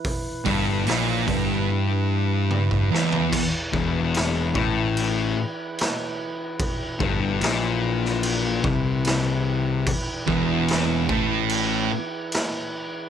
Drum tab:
CC |----------------|x---x---x---x---|x---x---x---x---|x---x---x---x---|
HH |o-o-o-o---------|----------------|----------------|----------------|
SD |----o---------o-|----o-------o---|----o--o----o---|----o-------o---|
T1 |------------o---|----------------|----------------|----------------|
FT |---------------o|----------------|----------------|----------------|
BD |o-o---o------o--|o-o---o---------|o-o-------o-----|o-o---o---------|